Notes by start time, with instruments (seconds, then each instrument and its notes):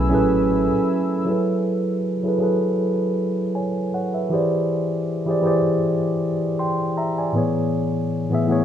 Already playing: fingered electric bass B1, tine electric piano F#3 C#4 E4 G#4 A4 B4, analog synth pad A3 G#5 B5 E6
0.09 fingered electric bass A1, tine electric piano F#3 C#4 E4 G#4
0.13 tine electric piano A4 B4
1.25 tine electric piano F#3 E4 G#4
1.29 tine electric piano A4 B4
2.23 tine electric piano F#3 E4 G#4 A4
2.28 tine electric piano B4
2.38 tine electric piano F#3 E4 G#4 A4
2.43 tine electric piano B4
3.55 tine electric piano C#5 G#5
3.94 tine electric piano C#5 F#5
4.14 tine electric piano B4 E5
4.29 tine electric piano E3 E4 G4 G#4
4.33 tine electric piano C5 D5
5.25 tine electric piano E3 E4 G4 G#4
5.29 tine electric piano C5 D5
5.41 tine electric piano E3 E4 G4 G#4
5.46 tine electric piano C5 D5
6.59 tine electric piano G5 C6
6.97 tine electric piano E5 A#5
7.18 tine electric piano D5 G#5
7.32 tine electric piano A2 E3 B3
7.36 tine electric piano G#4 C#5
8.29 tine electric piano A2 E3 B3
8.34 tine electric piano G#4 E5
8.47 tine electric piano A2 E3 B3
8.51 tine electric piano G#4 C#5